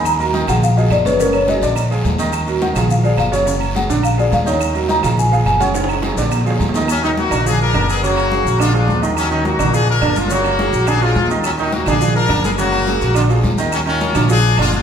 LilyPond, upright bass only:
\new Staff \with { instrumentName = "Upright bass" } { \clef bass \time 4/4 \key ees \minor \tempo 4 = 211 ees,4. bes,,4. ges,,4~ | ges,,4. bes,,4. ees,4~ | ees,4. bes,,4. ges,,4~ | ges,,4. bes,,4. ees,4~ |
ees,4. bes,,4. ges,,4~ | ges,,4. bes,,4. ees,4~ | ees,4. bes,,4. ges,,4~ | ges,,4. bes,,4. ees,4~ |
ees,4. bes,,4. ges,,4~ | ges,,4. bes,,4. ees,4~ | ees,4. bes,,4. ges,,4~ | ges,,4. bes,,4. ees,4~ |
ees,4. bes,,4. ges,,4 | }